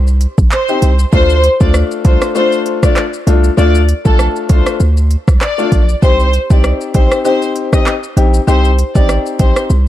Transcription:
Already playing: 808-style bass C2
0.07 shaker
0.21 closed hi-hat, shaker
0.38 808-style bass A#1, kick, shaker
0.51 violin section C5, clap, shaker
0.68 grand piano C4 D#4 G4, shaker
0.82 808-style bass C2, closed hi-hat, shaker
0.99 shaker
1.13 808-style bass D2, grand piano A3 D4 F4, violin section C5, kick, shaker
1.30 shaker
1.44 closed hi-hat, shaker
1.60 808-style bass D2, grand piano A3 D4 F4, violin section D5, kick, shaker
1.74 cross-stick, shaker
1.91 shaker
2.04 808-style bass C2, grand piano A3 D4 F4, violin section C5, kick, closed hi-hat, shaker
2.22 cross-stick, shaker
2.35 grand piano A3 D4 F4, violin section C5, shaker
2.52 shaker
2.66 closed hi-hat, shaker
2.83 grand piano A3 D4 F4, violin section D5, kick, cross-stick, shaker
2.96 cross-stick, clap, shaker
3.14 shaker
3.27 808-style bass C2, grand piano A3 D4 F4, closed hi-hat, shaker
3.44 shaker
3.57 808-style bass D2, grand piano A3 D4 F4, violin section D5, shaker
3.75 shaker
3.89 closed hi-hat, shaker
4.05 808-style bass A#1, grand piano A3 D4 F4, violin section A4, kick, shaker
4.19 cross-stick, shaker
4.36 shaker
4.49 808-style bass C2, grand piano A3 D4 F4, violin section C5, kick, closed hi-hat, shaker
4.66 cross-stick, shaker
4.80 808-style bass D2, shaker
4.97 shaker
5.11 closed hi-hat, shaker
5.28 808-style bass C2, kick, cross-stick, shaker
5.41 violin section D5, cross-stick, clap, shaker
5.58 grand piano A3 D4 F4, shaker
5.72 808-style bass A#1, kick, closed hi-hat, shaker
5.89 shaker
6.02 808-style bass C2, grand piano C4 D#4 G4, violin section C5, kick, shaker
6.20 shaker
6.33 closed hi-hat, shaker
6.50 808-style bass C2, grand piano C4 D#4 G4, violin section D5, kick, shaker
6.64 cross-stick, shaker
6.81 shaker
6.94 808-style bass A#1, grand piano C4 D#4 G4, violin section C5, kick, closed hi-hat, shaker
7.12 cross-stick, shaker
7.25 grand piano C4 D#4 G4, violin section C5, shaker
7.42 shaker
7.56 closed hi-hat, shaker
7.73 grand piano C4 D#4 G4, violin section D#5, kick, cross-stick, shaker
7.86 cross-stick, clap, shaker
8.03 shaker
8.17 808-style bass A#1, grand piano C4 D#4 G4, closed hi-hat, shaker
8.34 shaker
8.47 808-style bass C2, grand piano C4 D#4 G4, violin section C5, shaker
8.65 shaker
8.79 closed hi-hat, shaker
8.95 808-style bass A1, grand piano C4 D#4 G4, violin section D5, kick, shaker
9.09 cross-stick, shaker
9.26 shaker
9.39 808-style bass A#1, grand piano C4 D#4 G4, violin section C5, kick, closed hi-hat, shaker
9.56 cross-stick, shaker
9.70 808-style bass C2, shaker

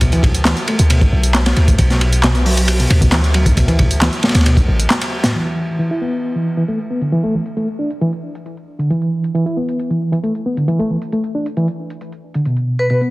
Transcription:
Already playing: 808-style bass D2
0.01 reed electric piano B2, kick, closed hi-hat, ride
0.12 reed electric piano E3, closed hi-hat, ride
0.23 reed electric piano B2, kick, ride
0.35 closed hi-hat
0.45 reed electric piano E3, snare, clap, closed hi-hat, ride
0.57 closed hi-hat
0.68 reed electric piano A3, ride
0.79 808-style bass D2, closed hi-hat
0.90 reed electric piano B2, closed hi-hat, ride
1.01 kick, closed hi-hat
1.12 808-style bass B1
1.23 closed hi-hat
1.34 snare, clap, closed hi-hat, ride
1.46 snare, closed hi-hat, ride
1.56 808-style bass D2, ride
1.68 reed electric piano A2, kick, closed hi-hat
1.78 808-style bass B1, reed electric piano B2, kick, closed hi-hat, ride
1.90 snare, closed hi-hat
2.01 ride
2.13 closed hi-hat
2.24 reed electric piano B2, snare, clap, closed hi-hat, ride
2.35 reed electric piano B3, closed hi-hat
2.46 reed electric piano F#3, open hi-hat
2.57 closed hi-hat, ride
2.68 closed hi-hat, ride
2.79 reed electric piano B2, closed hi-hat
2.90 808-style bass D2, ride
3.01 reed electric piano B2, kick, closed hi-hat
3.12 reed electric piano E3, snare, clap, closed hi-hat, ride
3.24 closed hi-hat
3.34 reed electric piano F#3, ride
3.46 reed electric piano A2, kick, closed hi-hat
3.57 reed electric piano B2, kick, closed hi-hat, ride
3.68 reed electric piano E3, closed hi-hat, ride
3.79 reed electric piano B2, kick, ride
3.91 closed hi-hat
4.01 reed electric piano E3, snare, clap, closed hi-hat, ride
4.13 closed hi-hat
4.23 reed electric piano A3, snare, ride
4.29 snare, ride
4.35 808-style bass D2, snare, closed hi-hat, ride
4.41 snare, ride
4.46 reed electric piano B2, closed hi-hat, ride
4.57 kick, closed hi-hat
4.68 808-style bass A1
4.80 closed hi-hat
4.90 snare, clap, closed hi-hat
5.01 closed hi-hat, ride
5.24 reed electric piano A2, snare, closed hi-hat
5.35 reed electric piano E3
5.46 closed hi-hat
5.68 closed hi-hat
5.79 reed electric piano E3, closed hi-hat
5.91 reed electric piano E4
6.01 reed electric piano B3
6.12 closed hi-hat
6.23 closed hi-hat
6.35 reed electric piano E3, closed hi-hat
6.57 reed electric piano E3, closed hi-hat
6.68 reed electric piano A3, closed hi-hat
6.79 closed hi-hat
6.90 reed electric piano B3
7.01 reed electric piano D3, closed hi-hat
7.12 reed electric piano E3, closed hi-hat
7.23 reed electric piano A3, closed hi-hat
7.34 reed electric piano E3
7.46 closed hi-hat
7.57 reed electric piano A3, closed hi-hat
7.68 closed hi-hat
7.79 reed electric piano D4
7.91 closed hi-hat
8.01 reed electric piano E3, closed hi-hat
8.13 closed hi-hat
8.35 closed hi-hat
8.46 closed hi-hat
8.57 closed hi-hat
8.79 reed electric piano D3, closed hi-hat
8.90 reed electric piano E3, closed hi-hat
9.02 closed hi-hat
9.24 closed hi-hat
9.35 reed electric piano E3, closed hi-hat
9.46 reed electric piano E4, closed hi-hat
9.57 reed electric piano B3
9.69 closed hi-hat
9.79 closed hi-hat
9.90 reed electric piano E3, closed hi-hat
10.12 reed electric piano E3, closed hi-hat
10.23 reed electric piano A3, closed hi-hat
10.35 closed hi-hat
10.46 reed electric piano B3
10.57 reed electric piano D3, closed hi-hat
10.68 reed electric piano E3, closed hi-hat
10.79 reed electric piano A3, closed hi-hat
10.90 reed electric piano E3
11.02 closed hi-hat
11.12 reed electric piano A3, closed hi-hat
11.24 closed hi-hat
11.35 reed electric piano D4
11.46 closed hi-hat
11.57 reed electric piano E3, closed hi-hat
11.68 closed hi-hat
11.90 closed hi-hat
12.01 closed hi-hat
12.12 closed hi-hat
12.34 reed electric piano D3, closed hi-hat
12.45 reed electric piano B2, closed hi-hat
12.57 closed hi-hat
12.79 vibraphone B4, closed hi-hat
12.90 reed electric piano B2, vibraphone B4, closed hi-hat
13.01 reed electric piano B3, closed hi-hat

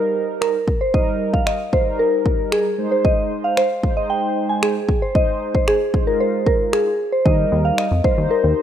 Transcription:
Already playing: analog polysynth G3 D#4 A#4, synth bell A#4
0.41 synth bell A#4, finger snap
0.68 kick
0.81 synth bell C5
0.94 analog polysynth G3 D#4 A#4, synth bell D#5, kick
1.33 synth bell F5, kick
1.46 synth bell D#5, finger snap
1.73 analog polysynth G3 D#4 A#4, synth bell C5, kick
1.86 analog polysynth G3 D#4 A#4
1.99 synth bell A#4
2.26 kick
2.52 synth bell G#4, finger snap
2.78 analog polysynth G#3 D#4 C5
2.92 synth bell C5
3.05 synth bell D#5, kick
3.44 synth bell F5
3.57 synth bell C5, finger snap
3.83 analog polysynth G#3 D#4 C5, kick
3.96 analog polysynth G#3 D#4 C5, synth bell D#5
4.10 synth bell G5
4.49 synth bell G#5
4.63 synth bell G#4, finger snap
4.89 kick
5.02 synth bell C5
5.15 analog polysynth G#3 D#4 C5, synth bell D#5, kick
5.55 synth bell C5, kick
5.68 synth bell G#4, finger snap
5.94 analog polysynth G#3 D#4 C5, kick
6.07 analog polysynth G#3 D#4 F4, synth bell A#4
6.20 synth bell C5
6.46 synth bell A#4, kick
6.73 synth bell G#4, finger snap
7.12 synth bell C5
7.25 analog synth bass D#2, analog polysynth G3 D#4 A#4, synth bell D#5, kick
7.52 analog synth bass D#2
7.65 synth bell F5
7.78 synth bell D#5, finger snap
7.91 analog synth bass F2
8.04 analog polysynth G3 D#4 A#4, synth bell C5, kick
8.17 analog synth bass D#2, analog polysynth G3 D#4 C5
8.31 synth bell A#4
8.44 analog synth bass D#2

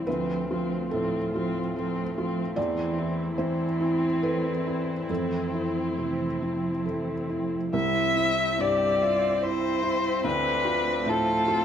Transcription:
Already playing: string section C4
0.05 felt piano D2 B4, cello F3, string section A3 F4, violin C4
0.49 cello F3, violin C4, felt piano F4
0.90 felt piano A2 A4, cello F3, violin C4
1.33 cello F3, violin C4, felt piano F4
1.76 cello F3, violin C4, felt piano A4
2.17 cello F3, violin C4, felt piano F4
2.56 felt piano E2 D5, cello E3, string section C4 E4, violin C4
2.98 felt piano E4
3.38 cello E3, felt piano E3 C5, violin C4
3.81 felt piano E4
4.23 felt piano A4 B4
4.66 felt piano E4
5.08 felt piano F2 A4, cello E3, string section A3, violin C4
5.54 felt piano E4
5.98 felt piano C3, cello E3
6.42 cello F3, felt piano E4
6.86 cello E3, felt piano A4
7.29 cello F3, felt piano E4
7.73 felt piano C2, string section G3 C4 E5, viola C4, cello E4, violin E5
8.16 felt piano E4
8.59 felt piano G2, cello G4, violin D5
9.01 cello F4, felt piano E5
9.42 cello E4, felt piano C5, violin C5
9.83 felt piano E4
10.24 felt piano D2, string section F3 A3, cello D4, violin B4
10.65 felt piano F4
11.06 felt piano A2, cello F4, violin A4
11.48 felt piano F4

